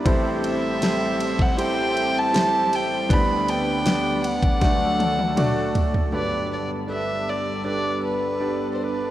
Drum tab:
RD |x-x-x-x-x-x-x-x-|x-x-x-xxx-x-x-x-|----------------|
SD |----o-------o---|----o---o-------|----------------|
T1 |----------------|----------oo----|----------------|
T2 |----------------|------------o---|----------------|
FT |----------------|--------------oo|----------------|
BD |o------o--------|o------oo-------|----------------|